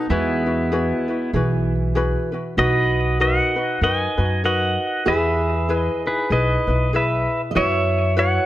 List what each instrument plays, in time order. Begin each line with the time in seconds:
Already playing: ukulele D#4 A4, pedal steel guitar D#4
0.10 upright bass E2, steel-string acoustic guitar G#3, pedal steel guitar B3 E4, ukulele E4 F#4 G#4 B4
0.46 ukulele E4 F#4 B4
0.72 ukulele E4 F#4 G#4 B4
1.08 ukulele E4 F#4 B4
1.33 upright bass B1, steel-string acoustic guitar E3, ukulele E4 F#4 G#4 B4
1.95 ukulele E4 F#4 G#4 B4
2.32 ukulele E4 F#4 B4
2.57 upright bass B1, ukulele D#4 F#4 B4, steel-string acoustic guitar F#4, pedal steel guitar B4 D#5
3.20 ukulele D#4 F#4 A#4 B4, pedal steel guitar D#5 F#5
3.56 ukulele D#4 F#4 B4
3.81 upright bass F#2, ukulele D#4 F#4 A#4 B4, pedal steel guitar D#5 G#5
4.17 upright bass F#2, ukulele D#4 F#4 B4
4.44 ukulele D#4 F#4 A#4 B4, pedal steel guitar D#5 F#5
5.05 upright bass E2, ukulele E4 G#4 B4, steel-string acoustic guitar G#4, pedal steel guitar B4 E5
5.69 ukulele E4 G#4 B4
5.76 pedal steel guitar D#5
6.06 ukulele D#4 E4 B4, pedal steel guitar G#4 B4
6.30 upright bass B1, ukulele D#4 E4 G#4 B4, pedal steel guitar B4 D#5
6.67 upright bass B1, ukulele D#4 E4 B4
6.93 ukulele E4 G#4 B4, pedal steel guitar B4 E5
7.51 steel-string acoustic guitar D#5
7.55 upright bass F#2, ukulele E4 F#4 B4 C#5, steel-string acoustic guitar C#5, pedal steel guitar C#5 E5
8.17 ukulele E4 F#4 B4 C#5, pedal steel guitar C#5 F#5